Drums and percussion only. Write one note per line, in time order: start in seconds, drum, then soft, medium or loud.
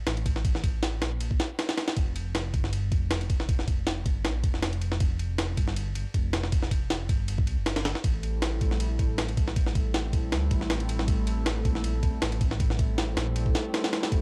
0.07 snare loud
0.07 ride medium
0.17 ride soft
0.26 kick medium
0.26 ride medium
0.36 snare soft
0.45 kick loud
0.45 ride medium
0.55 snare soft
0.64 kick medium
0.64 ride medium
0.83 snare loud
0.83 ride medium
1.02 snare loud
1.02 ride medium
1.21 ride medium
1.31 kick medium
1.40 snare loud
1.40 ride medium
1.59 snare loud
1.59 ride medium
1.69 snare loud
1.69 ride medium
1.78 snare medium
1.78 ride medium
1.88 snare loud
1.88 ride medium
1.97 kick loud
1.97 ride medium
2.16 ride medium
2.35 snare loud
2.35 ride medium
2.54 kick medium
2.54 ride medium
2.64 snare soft
2.73 ride medium
2.92 kick medium
2.92 ride medium
3.11 snare loud
3.11 ride medium
3.21 ride soft
3.30 kick medium
3.30 ride medium
3.40 snare soft
3.49 kick loud
3.49 ride medium
3.59 snare soft
3.68 kick medium
3.68 ride medium
3.87 snare loud
3.87 ride medium
4.06 kick medium
4.06 ride medium
4.24 snare loud
4.24 ride medium
4.43 kick medium
4.43 ride medium
4.54 snare soft
4.62 snare loud
4.62 ride medium
4.73 ride soft
4.81 ride medium
4.92 snare medium
5.00 kick loud
5.00 ride medium
5.19 ride medium
5.38 snare loud
5.38 ride medium
5.57 kick medium
5.57 ride medium
5.68 snare soft
5.76 ride medium
5.95 ride medium
6.14 kick medium
6.14 ride medium
6.33 snare medium
6.33 ride medium
6.44 snare soft
6.52 kick loud
6.52 ride medium
6.63 snare soft
6.71 kick medium
6.71 ride medium
6.90 snare loud
6.90 ride medium
7.09 kick medium
7.09 ride medium
7.28 ride medium
7.38 kick medium
7.47 ride medium
7.66 snare loud
7.66 ride medium
7.76 snare loud
7.76 ride medium
7.85 snare medium
7.85 ride medium
7.95 snare medium
8.04 kick loud
8.04 ride medium
8.23 ride medium
8.42 snare loud
8.42 ride medium
8.61 kick medium
8.61 ride medium
8.71 snare soft
8.80 ride medium
8.99 kick medium
8.99 ride medium
9.18 snare loud
9.18 ride medium
9.28 ride soft
9.37 kick medium
9.37 ride medium
9.48 snare soft
9.56 kick loud
9.56 ride medium
9.66 snare soft
9.75 kick medium
9.75 ride medium
9.94 snare loud
9.94 ride medium
10.13 kick medium
10.13 ride medium
10.32 snare medium
10.32 ride medium
10.51 kick medium
10.51 ride medium
10.61 snare soft
10.70 snare loud
10.70 ride medium
10.80 ride soft
10.89 ride medium
10.99 snare medium
11.08 kick loud
11.08 ride medium
11.27 ride medium
11.46 snare loud
11.46 ride medium
11.65 kick medium
11.65 ride medium
11.75 snare soft
11.84 ride medium
12.03 kick medium
12.03 ride medium
12.22 snare loud
12.22 ride medium
12.32 ride soft
12.41 kick medium
12.41 ride medium
12.51 snare soft
12.60 kick loud
12.60 ride medium
12.70 snare soft
12.79 kick medium
12.79 ride medium
12.98 snare loud
12.98 ride medium
13.17 snare loud
13.17 ride medium
13.36 ride medium
13.46 kick medium
13.55 snare loud
13.55 ride medium
13.74 snare loud
13.74 ride medium
13.84 snare loud
13.84 ride medium
13.93 snare loud
13.93 ride medium
14.03 snare loud
14.03 ride medium
14.12 kick loud
14.12 ride medium